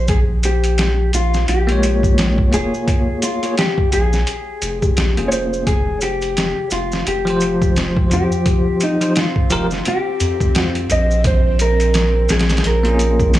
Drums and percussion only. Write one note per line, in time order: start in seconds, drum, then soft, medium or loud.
0.08 kick loud
0.08 closed hi-hat medium
0.08 maracas soft
0.43 closed hi-hat medium
0.43 maracas medium
0.64 closed hi-hat soft
0.64 maracas medium
0.78 snare loud
0.78 closed hi-hat medium
0.78 maracas soft
1.13 closed hi-hat medium
1.13 maracas loud
1.34 snare soft
1.34 maracas medium
1.48 closed hi-hat medium
1.48 maracas soft
1.69 closed hi-hat soft
1.83 closed hi-hat medium
1.83 maracas medium
2.03 kick medium
2.03 maracas soft
2.18 snare loud
2.18 closed hi-hat medium
2.18 maracas soft
2.38 kick medium
2.53 closed hi-hat medium
2.53 maracas loud
2.74 maracas soft
2.88 kick loud
2.88 closed hi-hat medium
2.88 maracas soft
3.22 closed hi-hat medium
3.22 maracas medium
3.43 closed hi-hat soft
3.43 maracas soft
3.58 snare loud
3.58 closed hi-hat medium
3.58 maracas soft
3.78 kick medium
3.92 closed hi-hat medium
3.92 maracas medium
4.13 snare soft
4.13 maracas soft
4.27 closed hi-hat medium
4.27 maracas soft
4.62 closed hi-hat medium
4.62 maracas medium
4.82 kick medium
4.82 maracas soft
4.97 snare loud
4.97 closed hi-hat medium
4.97 maracas soft
5.17 closed hi-hat soft
5.32 closed hi-hat medium
5.32 maracas medium
5.53 maracas soft
5.67 kick loud
5.67 closed hi-hat medium
5.67 maracas soft
6.01 closed hi-hat medium
6.01 maracas medium
6.21 closed hi-hat soft
6.21 maracas soft
6.37 snare loud
6.37 closed hi-hat medium
6.37 maracas soft
6.70 closed hi-hat medium
6.70 maracas medium
6.92 snare soft
6.92 maracas soft
7.06 closed hi-hat medium
7.06 maracas soft
7.27 closed hi-hat soft
7.40 closed hi-hat medium
7.40 maracas medium
7.62 kick medium
7.62 maracas soft
7.76 snare loud
7.76 closed hi-hat medium
7.76 maracas soft
7.97 kick medium
8.11 closed hi-hat medium
8.11 maracas medium
8.32 maracas medium
8.46 kick loud
8.46 closed hi-hat medium
8.46 maracas soft
8.80 closed hi-hat medium
8.80 maracas medium
9.01 closed hi-hat soft
9.01 maracas medium
9.16 snare loud
9.16 closed hi-hat medium
9.16 maracas soft
9.36 kick medium
9.50 closed hi-hat medium
9.50 maracas medium
9.71 snare soft
9.71 maracas soft
9.85 closed hi-hat medium
9.85 maracas soft
10.20 closed hi-hat medium
10.20 maracas medium
10.40 kick medium
10.40 maracas soft
10.55 snare loud
10.55 closed hi-hat medium
10.55 maracas soft
10.75 closed hi-hat soft
10.90 closed hi-hat medium
10.90 maracas medium
11.11 maracas soft
11.24 kick loud
11.24 closed hi-hat medium
11.24 maracas soft
11.59 closed hi-hat medium
11.59 maracas medium
11.80 closed hi-hat soft
11.80 maracas medium
11.94 snare loud
11.94 closed hi-hat medium
11.94 maracas soft
12.29 snare medium
12.29 closed hi-hat medium
12.29 maracas medium
12.39 snare medium
12.39 closed hi-hat medium
12.49 snare medium
12.49 closed hi-hat medium
12.49 maracas soft
12.57 snare medium
12.57 closed hi-hat medium
12.64 closed hi-hat medium
12.64 maracas soft
12.85 closed hi-hat soft
12.99 closed hi-hat medium
12.99 maracas medium
13.19 kick loud
13.19 maracas soft
13.33 snare loud
13.33 closed hi-hat medium
13.33 maracas soft